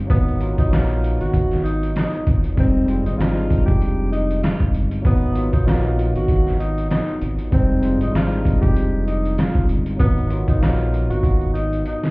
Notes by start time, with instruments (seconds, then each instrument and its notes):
Already playing: tine electric piano G3 G#3 C4 D4 D#4
0.07 fingered electric bass G#1, tine electric piano F#3 A#3 B3, tenor saxophone B3, kick, closed hi-hat
0.11 tine electric piano D#4
0.28 closed hi-hat
0.37 tine electric piano F#3 A#3 B3, closed hi-hat
0.42 tine electric piano F4
0.58 fingered electric bass A#1, tenor saxophone D#4, kick, closed hi-hat
0.70 tine electric piano F#3 A#3 B3, tenor saxophone F4, snare, closed hi-hat
0.74 tine electric piano D#4, cross-stick
0.90 closed hi-hat
1.04 closed hi-hat
1.20 fingered electric bass G#1, tenor saxophone F#4, closed hi-hat
1.34 kick, closed hi-hat
1.51 snare, closed hi-hat
1.63 tenor saxophone D#4, closed hi-hat
1.83 closed hi-hat
1.96 tenor saxophone D#4, cross-stick, snare, closed hi-hat
2.14 closed hi-hat
2.27 fingered electric bass G#1, kick, closed hi-hat
2.44 closed hi-hat
2.55 fingered electric bass F1, tine electric piano G3 G#3 C4, kick, closed hi-hat
2.59 tenor saxophone C4, tine electric piano D#4
2.86 tine electric piano G3 G#3 C4, closed hi-hat
2.91 tine electric piano F4
3.06 fingered electric bass G#1, tenor saxophone D#4, closed hi-hat
3.17 tine electric piano G3 G#3 C4, tenor saxophone F4, snare
3.21 tine electric piano D4, cross-stick, closed hi-hat
3.28 tine electric piano D#4
3.37 closed hi-hat
3.50 kick, closed hi-hat
3.66 fingered electric bass F1, tenor saxophone G4, kick, closed hi-hat
3.82 closed hi-hat
4.12 tenor saxophone D#4, closed hi-hat
4.31 closed hi-hat
4.43 tenor saxophone F4, cross-stick, snare, closed hi-hat
4.60 kick, closed hi-hat
4.74 fingered electric bass G1, closed hi-hat
4.91 closed hi-hat
5.02 fingered electric bass G#1, tine electric piano F#3 A#3 B3, kick, closed hi-hat
5.06 tenor saxophone B3, tine electric piano D#4
5.32 tine electric piano F#3 A#3 B3, closed hi-hat
5.37 tine electric piano F4
5.52 fingered electric bass A#1, tenor saxophone D#4, kick, closed hi-hat
5.65 tine electric piano F#3 A#3 B3, tenor saxophone F4, snare, closed hi-hat
5.69 tine electric piano D#4, cross-stick
5.84 closed hi-hat
5.99 closed hi-hat
6.15 fingered electric bass G#1, tenor saxophone F#4, closed hi-hat
6.28 kick, closed hi-hat
6.47 snare
6.59 tenor saxophone D#4, closed hi-hat
6.78 closed hi-hat
6.90 tenor saxophone D#4, cross-stick, snare, closed hi-hat
7.09 closed hi-hat
7.22 fingered electric bass G#1, closed hi-hat
7.39 closed hi-hat
7.50 fingered electric bass F1, tine electric piano G3 G#3 C4, tenor saxophone C4, kick, closed hi-hat
7.55 tine electric piano D#4
7.81 tine electric piano G3 G#3 C4, closed hi-hat
7.85 tine electric piano F4
8.01 fingered electric bass G#1, tenor saxophone D#4, closed hi-hat
8.12 tine electric piano G3 G#3 C4, tenor saxophone F4, snare
8.16 tine electric piano D4, cross-stick, closed hi-hat
8.23 tine electric piano D#4
8.32 closed hi-hat
8.45 kick, closed hi-hat
8.61 fingered electric bass F1, tenor saxophone G4, kick, closed hi-hat
8.76 closed hi-hat
9.06 tenor saxophone D#4, closed hi-hat
9.25 closed hi-hat
9.38 tenor saxophone F4, cross-stick, snare, closed hi-hat
9.55 kick, closed hi-hat
9.69 fingered electric bass G1, closed hi-hat
9.86 closed hi-hat
9.96 fingered electric bass G#1, tine electric piano F#3 A#3 B3, tenor saxophone B3, kick, closed hi-hat
10.01 tine electric piano D#4
10.18 closed hi-hat
10.27 tine electric piano F#3 A#3 B3, closed hi-hat
10.32 tine electric piano F4
10.48 fingered electric bass A#1, tenor saxophone D#4, kick, closed hi-hat
10.59 tine electric piano F#3 A#3 B3, tenor saxophone F4, snare, closed hi-hat
10.64 tine electric piano D#4, cross-stick
10.79 closed hi-hat
10.94 closed hi-hat
11.10 fingered electric bass G#1, tenor saxophone F#4, closed hi-hat
11.23 kick, closed hi-hat
11.41 closed hi-hat
11.53 tenor saxophone D#4, closed hi-hat
11.73 closed hi-hat
11.86 tenor saxophone D#4, closed hi-hat
12.04 snare, closed hi-hat